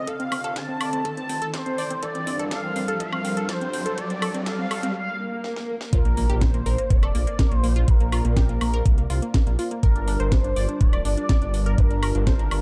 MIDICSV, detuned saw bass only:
0, 0, Header, 1, 2, 480
1, 0, Start_track
1, 0, Key_signature, -2, "minor"
1, 0, Tempo, 487805
1, 74, Time_signature, 4, 2, 24, 8
1, 12413, End_track
2, 0, Start_track
2, 0, Title_t, "Detuned saw bass"
2, 0, Program_c, 0, 39
2, 74, Note_on_c, 0, 29, 83
2, 406, Note_off_c, 0, 29, 0
2, 436, Note_on_c, 0, 29, 102
2, 766, Note_off_c, 0, 29, 0
2, 794, Note_on_c, 0, 29, 99
2, 998, Note_off_c, 0, 29, 0
2, 1034, Note_on_c, 0, 31, 87
2, 1238, Note_off_c, 0, 31, 0
2, 1274, Note_on_c, 0, 31, 89
2, 1377, Note_off_c, 0, 31, 0
2, 1636, Note_on_c, 0, 29, 85
2, 1736, Note_off_c, 0, 29, 0
2, 1994, Note_on_c, 0, 31, 97
2, 2326, Note_off_c, 0, 31, 0
2, 2356, Note_on_c, 0, 31, 85
2, 2686, Note_off_c, 0, 31, 0
2, 2715, Note_on_c, 0, 31, 96
2, 2817, Note_off_c, 0, 31, 0
2, 2954, Note_on_c, 0, 26, 108
2, 3158, Note_off_c, 0, 26, 0
2, 3195, Note_on_c, 0, 31, 96
2, 3297, Note_off_c, 0, 31, 0
2, 3556, Note_on_c, 0, 31, 94
2, 3886, Note_off_c, 0, 31, 0
2, 3914, Note_on_c, 0, 31, 85
2, 4246, Note_off_c, 0, 31, 0
2, 4276, Note_on_c, 0, 31, 101
2, 4606, Note_off_c, 0, 31, 0
2, 4634, Note_on_c, 0, 31, 97
2, 4839, Note_off_c, 0, 31, 0
2, 5834, Note_on_c, 0, 34, 96
2, 6166, Note_off_c, 0, 34, 0
2, 6195, Note_on_c, 0, 34, 86
2, 6525, Note_off_c, 0, 34, 0
2, 6554, Note_on_c, 0, 34, 96
2, 6657, Note_off_c, 0, 34, 0
2, 6794, Note_on_c, 0, 29, 103
2, 6998, Note_off_c, 0, 29, 0
2, 7033, Note_on_c, 0, 34, 98
2, 7137, Note_off_c, 0, 34, 0
2, 7395, Note_on_c, 0, 34, 88
2, 7725, Note_off_c, 0, 34, 0
2, 7755, Note_on_c, 0, 34, 87
2, 8086, Note_off_c, 0, 34, 0
2, 8116, Note_on_c, 0, 34, 101
2, 8446, Note_off_c, 0, 34, 0
2, 8474, Note_on_c, 0, 34, 99
2, 8678, Note_off_c, 0, 34, 0
2, 8714, Note_on_c, 0, 36, 90
2, 8918, Note_off_c, 0, 36, 0
2, 8955, Note_on_c, 0, 36, 88
2, 9058, Note_off_c, 0, 36, 0
2, 9316, Note_on_c, 0, 34, 103
2, 9417, Note_off_c, 0, 34, 0
2, 9674, Note_on_c, 0, 31, 100
2, 10006, Note_off_c, 0, 31, 0
2, 10035, Note_on_c, 0, 31, 84
2, 10365, Note_off_c, 0, 31, 0
2, 10394, Note_on_c, 0, 31, 95
2, 10497, Note_off_c, 0, 31, 0
2, 10634, Note_on_c, 0, 26, 109
2, 10838, Note_off_c, 0, 26, 0
2, 10874, Note_on_c, 0, 31, 101
2, 10977, Note_off_c, 0, 31, 0
2, 11235, Note_on_c, 0, 31, 97
2, 11566, Note_off_c, 0, 31, 0
2, 11594, Note_on_c, 0, 31, 81
2, 11926, Note_off_c, 0, 31, 0
2, 11956, Note_on_c, 0, 31, 104
2, 12286, Note_off_c, 0, 31, 0
2, 12314, Note_on_c, 0, 31, 98
2, 12413, Note_off_c, 0, 31, 0
2, 12413, End_track
0, 0, End_of_file